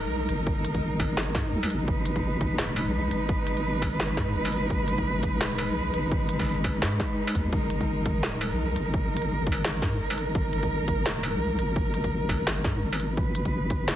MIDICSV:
0, 0, Header, 1, 5, 480
1, 0, Start_track
1, 0, Key_signature, 5, "minor"
1, 0, Tempo, 352941
1, 635, Time_signature, 4, 2, 24, 8
1, 18984, End_track
2, 0, Start_track
2, 0, Title_t, "Cello section"
2, 0, Program_c, 0, 48
2, 0, Note_on_c, 0, 56, 91
2, 0, Note_on_c, 0, 63, 76
2, 0, Note_on_c, 0, 70, 97
2, 2528, Note_off_c, 0, 70, 0
2, 2557, Note_on_c, 0, 71, 97
2, 10210, Note_off_c, 0, 71, 0
2, 10240, Note_on_c, 0, 70, 95
2, 17891, Note_off_c, 0, 70, 0
2, 17918, Note_on_c, 0, 71, 95
2, 18984, Note_off_c, 0, 56, 0
2, 18984, Note_off_c, 0, 63, 0
2, 18984, Note_off_c, 0, 71, 0
2, 18984, End_track
3, 0, Start_track
3, 0, Title_t, "Wobble bass"
3, 0, Program_c, 1, 39
3, 54, Note_on_c, 1, 35, 90
3, 382, Note_off_c, 1, 35, 0
3, 392, Note_on_c, 1, 32, 94
3, 1833, Note_on_c, 1, 44, 94
3, 1853, Note_off_c, 1, 32, 0
3, 2058, Note_off_c, 1, 44, 0
3, 2075, Note_on_c, 1, 37, 88
3, 2313, Note_on_c, 1, 32, 98
3, 2334, Note_off_c, 1, 37, 0
3, 2538, Note_off_c, 1, 32, 0
3, 2555, Note_on_c, 1, 32, 100
3, 3503, Note_off_c, 1, 32, 0
3, 3514, Note_on_c, 1, 27, 92
3, 3893, Note_on_c, 1, 35, 93
3, 3914, Note_off_c, 1, 27, 0
3, 4222, Note_off_c, 1, 35, 0
3, 4233, Note_on_c, 1, 32, 94
3, 5673, Note_on_c, 1, 44, 95
3, 5693, Note_off_c, 1, 32, 0
3, 5913, Note_on_c, 1, 32, 92
3, 5933, Note_off_c, 1, 44, 0
3, 6381, Note_off_c, 1, 32, 0
3, 6394, Note_on_c, 1, 32, 106
3, 7342, Note_off_c, 1, 32, 0
3, 7353, Note_on_c, 1, 27, 86
3, 7737, Note_on_c, 1, 35, 90
3, 7757, Note_off_c, 1, 27, 0
3, 8063, Note_off_c, 1, 35, 0
3, 8077, Note_on_c, 1, 32, 95
3, 9275, Note_on_c, 1, 44, 106
3, 9296, Note_off_c, 1, 32, 0
3, 9499, Note_off_c, 1, 44, 0
3, 9994, Note_on_c, 1, 39, 85
3, 10219, Note_off_c, 1, 39, 0
3, 10234, Note_on_c, 1, 32, 105
3, 11182, Note_off_c, 1, 32, 0
3, 11194, Note_on_c, 1, 27, 93
3, 11576, Note_on_c, 1, 35, 93
3, 11596, Note_off_c, 1, 27, 0
3, 11903, Note_off_c, 1, 35, 0
3, 11912, Note_on_c, 1, 32, 99
3, 13355, Note_on_c, 1, 44, 94
3, 13375, Note_off_c, 1, 32, 0
3, 13595, Note_on_c, 1, 32, 95
3, 13615, Note_off_c, 1, 44, 0
3, 14062, Note_off_c, 1, 32, 0
3, 14076, Note_on_c, 1, 32, 102
3, 15023, Note_off_c, 1, 32, 0
3, 15032, Note_on_c, 1, 27, 90
3, 15414, Note_on_c, 1, 35, 92
3, 15434, Note_off_c, 1, 27, 0
3, 15742, Note_off_c, 1, 35, 0
3, 15754, Note_on_c, 1, 32, 97
3, 17197, Note_on_c, 1, 44, 93
3, 17217, Note_off_c, 1, 32, 0
3, 17432, Note_on_c, 1, 32, 87
3, 17452, Note_off_c, 1, 44, 0
3, 17901, Note_off_c, 1, 32, 0
3, 17915, Note_on_c, 1, 32, 104
3, 18862, Note_off_c, 1, 32, 0
3, 18872, Note_on_c, 1, 27, 88
3, 18984, Note_off_c, 1, 27, 0
3, 18984, End_track
4, 0, Start_track
4, 0, Title_t, "Struck metal"
4, 1355, Note_on_c, 9, 77, 61
4, 1491, Note_off_c, 9, 77, 0
4, 1593, Note_on_c, 9, 77, 49
4, 1729, Note_off_c, 9, 77, 0
4, 2217, Note_on_c, 9, 77, 78
4, 2353, Note_off_c, 9, 77, 0
4, 3756, Note_on_c, 9, 77, 77
4, 3892, Note_off_c, 9, 77, 0
4, 5196, Note_on_c, 9, 77, 64
4, 5332, Note_off_c, 9, 77, 0
4, 5437, Note_on_c, 9, 77, 53
4, 5573, Note_off_c, 9, 77, 0
4, 6052, Note_on_c, 9, 77, 82
4, 6188, Note_off_c, 9, 77, 0
4, 7594, Note_on_c, 9, 77, 84
4, 7730, Note_off_c, 9, 77, 0
4, 8696, Note_on_c, 9, 77, 38
4, 8721, Note_off_c, 9, 77, 0
4, 8721, Note_on_c, 9, 77, 32
4, 8744, Note_off_c, 9, 77, 0
4, 8744, Note_on_c, 9, 77, 25
4, 8766, Note_off_c, 9, 77, 0
4, 8766, Note_on_c, 9, 77, 20
4, 8791, Note_off_c, 9, 77, 0
4, 8791, Note_on_c, 9, 77, 18
4, 8826, Note_off_c, 9, 77, 0
4, 8826, Note_on_c, 9, 77, 15
4, 8865, Note_off_c, 9, 77, 0
4, 8865, Note_on_c, 9, 77, 12
4, 8901, Note_off_c, 9, 77, 0
4, 8901, Note_on_c, 9, 77, 10
4, 9033, Note_off_c, 9, 77, 0
4, 9033, Note_on_c, 9, 77, 65
4, 9169, Note_off_c, 9, 77, 0
4, 9275, Note_on_c, 9, 77, 58
4, 9411, Note_off_c, 9, 77, 0
4, 9893, Note_on_c, 9, 77, 84
4, 10029, Note_off_c, 9, 77, 0
4, 11437, Note_on_c, 9, 77, 87
4, 11573, Note_off_c, 9, 77, 0
4, 12947, Note_on_c, 9, 77, 66
4, 13083, Note_off_c, 9, 77, 0
4, 13117, Note_on_c, 9, 77, 55
4, 13253, Note_off_c, 9, 77, 0
4, 13739, Note_on_c, 9, 77, 83
4, 13875, Note_off_c, 9, 77, 0
4, 15276, Note_on_c, 9, 77, 82
4, 15412, Note_off_c, 9, 77, 0
4, 16720, Note_on_c, 9, 77, 63
4, 16856, Note_off_c, 9, 77, 0
4, 16957, Note_on_c, 9, 77, 52
4, 17093, Note_off_c, 9, 77, 0
4, 17580, Note_on_c, 9, 77, 77
4, 17716, Note_off_c, 9, 77, 0
4, 18984, End_track
5, 0, Start_track
5, 0, Title_t, "Drums"
5, 393, Note_on_c, 9, 42, 76
5, 529, Note_off_c, 9, 42, 0
5, 634, Note_on_c, 9, 36, 126
5, 770, Note_off_c, 9, 36, 0
5, 878, Note_on_c, 9, 42, 84
5, 1013, Note_off_c, 9, 42, 0
5, 1013, Note_on_c, 9, 36, 65
5, 1013, Note_on_c, 9, 42, 39
5, 1149, Note_off_c, 9, 36, 0
5, 1149, Note_off_c, 9, 42, 0
5, 1354, Note_on_c, 9, 36, 103
5, 1355, Note_on_c, 9, 42, 67
5, 1490, Note_off_c, 9, 36, 0
5, 1491, Note_off_c, 9, 42, 0
5, 1593, Note_on_c, 9, 38, 125
5, 1729, Note_off_c, 9, 38, 0
5, 1831, Note_on_c, 9, 38, 65
5, 1834, Note_on_c, 9, 36, 115
5, 1967, Note_off_c, 9, 38, 0
5, 1970, Note_off_c, 9, 36, 0
5, 2315, Note_on_c, 9, 42, 70
5, 2451, Note_off_c, 9, 42, 0
5, 2555, Note_on_c, 9, 36, 122
5, 2691, Note_off_c, 9, 36, 0
5, 2795, Note_on_c, 9, 42, 82
5, 2931, Note_off_c, 9, 42, 0
5, 2934, Note_on_c, 9, 42, 36
5, 2935, Note_on_c, 9, 36, 64
5, 3070, Note_off_c, 9, 42, 0
5, 3071, Note_off_c, 9, 36, 0
5, 3274, Note_on_c, 9, 36, 104
5, 3278, Note_on_c, 9, 42, 66
5, 3410, Note_off_c, 9, 36, 0
5, 3414, Note_off_c, 9, 42, 0
5, 3514, Note_on_c, 9, 38, 122
5, 3650, Note_off_c, 9, 38, 0
5, 3756, Note_on_c, 9, 42, 78
5, 3892, Note_off_c, 9, 42, 0
5, 4233, Note_on_c, 9, 42, 70
5, 4369, Note_off_c, 9, 42, 0
5, 4474, Note_on_c, 9, 36, 123
5, 4610, Note_off_c, 9, 36, 0
5, 4715, Note_on_c, 9, 42, 82
5, 4851, Note_off_c, 9, 42, 0
5, 4854, Note_on_c, 9, 42, 35
5, 4990, Note_off_c, 9, 42, 0
5, 5193, Note_on_c, 9, 36, 99
5, 5196, Note_on_c, 9, 42, 65
5, 5329, Note_off_c, 9, 36, 0
5, 5332, Note_off_c, 9, 42, 0
5, 5437, Note_on_c, 9, 38, 121
5, 5573, Note_off_c, 9, 38, 0
5, 5674, Note_on_c, 9, 36, 107
5, 5675, Note_on_c, 9, 38, 59
5, 5675, Note_on_c, 9, 42, 78
5, 5810, Note_off_c, 9, 36, 0
5, 5811, Note_off_c, 9, 38, 0
5, 5811, Note_off_c, 9, 42, 0
5, 6152, Note_on_c, 9, 42, 66
5, 6288, Note_off_c, 9, 42, 0
5, 6395, Note_on_c, 9, 36, 111
5, 6531, Note_off_c, 9, 36, 0
5, 6634, Note_on_c, 9, 42, 82
5, 6770, Note_off_c, 9, 42, 0
5, 6772, Note_on_c, 9, 42, 37
5, 6775, Note_on_c, 9, 36, 61
5, 6908, Note_off_c, 9, 42, 0
5, 6911, Note_off_c, 9, 36, 0
5, 7110, Note_on_c, 9, 42, 67
5, 7116, Note_on_c, 9, 36, 94
5, 7246, Note_off_c, 9, 42, 0
5, 7252, Note_off_c, 9, 36, 0
5, 7353, Note_on_c, 9, 38, 112
5, 7489, Note_off_c, 9, 38, 0
5, 7594, Note_on_c, 9, 42, 82
5, 7730, Note_off_c, 9, 42, 0
5, 8076, Note_on_c, 9, 42, 68
5, 8212, Note_off_c, 9, 42, 0
5, 8316, Note_on_c, 9, 36, 116
5, 8452, Note_off_c, 9, 36, 0
5, 8554, Note_on_c, 9, 42, 87
5, 8690, Note_off_c, 9, 42, 0
5, 8696, Note_on_c, 9, 36, 61
5, 8696, Note_on_c, 9, 42, 37
5, 8832, Note_off_c, 9, 36, 0
5, 8832, Note_off_c, 9, 42, 0
5, 9033, Note_on_c, 9, 42, 72
5, 9036, Note_on_c, 9, 36, 98
5, 9169, Note_off_c, 9, 42, 0
5, 9172, Note_off_c, 9, 36, 0
5, 9275, Note_on_c, 9, 38, 113
5, 9411, Note_off_c, 9, 38, 0
5, 9516, Note_on_c, 9, 36, 105
5, 9517, Note_on_c, 9, 38, 59
5, 9517, Note_on_c, 9, 42, 84
5, 9652, Note_off_c, 9, 36, 0
5, 9653, Note_off_c, 9, 38, 0
5, 9653, Note_off_c, 9, 42, 0
5, 9995, Note_on_c, 9, 36, 58
5, 9995, Note_on_c, 9, 42, 72
5, 10131, Note_off_c, 9, 36, 0
5, 10131, Note_off_c, 9, 42, 0
5, 10235, Note_on_c, 9, 36, 123
5, 10371, Note_off_c, 9, 36, 0
5, 10474, Note_on_c, 9, 42, 88
5, 10610, Note_off_c, 9, 42, 0
5, 10616, Note_on_c, 9, 36, 61
5, 10616, Note_on_c, 9, 42, 39
5, 10752, Note_off_c, 9, 36, 0
5, 10752, Note_off_c, 9, 42, 0
5, 10956, Note_on_c, 9, 36, 102
5, 10956, Note_on_c, 9, 42, 70
5, 11092, Note_off_c, 9, 36, 0
5, 11092, Note_off_c, 9, 42, 0
5, 11194, Note_on_c, 9, 38, 121
5, 11330, Note_off_c, 9, 38, 0
5, 11437, Note_on_c, 9, 42, 85
5, 11573, Note_off_c, 9, 42, 0
5, 11915, Note_on_c, 9, 42, 73
5, 12051, Note_off_c, 9, 42, 0
5, 12155, Note_on_c, 9, 36, 127
5, 12291, Note_off_c, 9, 36, 0
5, 12467, Note_on_c, 9, 42, 90
5, 12537, Note_off_c, 9, 42, 0
5, 12537, Note_on_c, 9, 42, 42
5, 12673, Note_off_c, 9, 42, 0
5, 12875, Note_on_c, 9, 42, 73
5, 12876, Note_on_c, 9, 36, 107
5, 13011, Note_off_c, 9, 42, 0
5, 13012, Note_off_c, 9, 36, 0
5, 13117, Note_on_c, 9, 38, 127
5, 13253, Note_off_c, 9, 38, 0
5, 13356, Note_on_c, 9, 36, 122
5, 13360, Note_on_c, 9, 38, 66
5, 13360, Note_on_c, 9, 42, 85
5, 13492, Note_off_c, 9, 36, 0
5, 13496, Note_off_c, 9, 38, 0
5, 13496, Note_off_c, 9, 42, 0
5, 13841, Note_on_c, 9, 42, 71
5, 13977, Note_off_c, 9, 42, 0
5, 14076, Note_on_c, 9, 36, 127
5, 14212, Note_off_c, 9, 36, 0
5, 14321, Note_on_c, 9, 42, 86
5, 14455, Note_on_c, 9, 36, 67
5, 14457, Note_off_c, 9, 42, 0
5, 14459, Note_on_c, 9, 42, 40
5, 14591, Note_off_c, 9, 36, 0
5, 14595, Note_off_c, 9, 42, 0
5, 14795, Note_on_c, 9, 36, 105
5, 14797, Note_on_c, 9, 42, 75
5, 14931, Note_off_c, 9, 36, 0
5, 14933, Note_off_c, 9, 42, 0
5, 15037, Note_on_c, 9, 38, 127
5, 15173, Note_off_c, 9, 38, 0
5, 15276, Note_on_c, 9, 42, 87
5, 15412, Note_off_c, 9, 42, 0
5, 15760, Note_on_c, 9, 42, 74
5, 15896, Note_off_c, 9, 42, 0
5, 15994, Note_on_c, 9, 36, 121
5, 16130, Note_off_c, 9, 36, 0
5, 16237, Note_on_c, 9, 42, 79
5, 16373, Note_off_c, 9, 42, 0
5, 16375, Note_on_c, 9, 36, 66
5, 16380, Note_on_c, 9, 42, 36
5, 16511, Note_off_c, 9, 36, 0
5, 16516, Note_off_c, 9, 42, 0
5, 16715, Note_on_c, 9, 36, 103
5, 16851, Note_off_c, 9, 36, 0
5, 16957, Note_on_c, 9, 38, 125
5, 17093, Note_off_c, 9, 38, 0
5, 17195, Note_on_c, 9, 36, 120
5, 17197, Note_on_c, 9, 38, 66
5, 17197, Note_on_c, 9, 42, 77
5, 17331, Note_off_c, 9, 36, 0
5, 17333, Note_off_c, 9, 38, 0
5, 17333, Note_off_c, 9, 42, 0
5, 17677, Note_on_c, 9, 42, 69
5, 17813, Note_off_c, 9, 42, 0
5, 17916, Note_on_c, 9, 36, 118
5, 18052, Note_off_c, 9, 36, 0
5, 18155, Note_on_c, 9, 42, 79
5, 18291, Note_off_c, 9, 42, 0
5, 18296, Note_on_c, 9, 36, 63
5, 18296, Note_on_c, 9, 42, 36
5, 18432, Note_off_c, 9, 36, 0
5, 18432, Note_off_c, 9, 42, 0
5, 18634, Note_on_c, 9, 42, 63
5, 18637, Note_on_c, 9, 36, 96
5, 18770, Note_off_c, 9, 42, 0
5, 18773, Note_off_c, 9, 36, 0
5, 18874, Note_on_c, 9, 38, 119
5, 18984, Note_off_c, 9, 38, 0
5, 18984, End_track
0, 0, End_of_file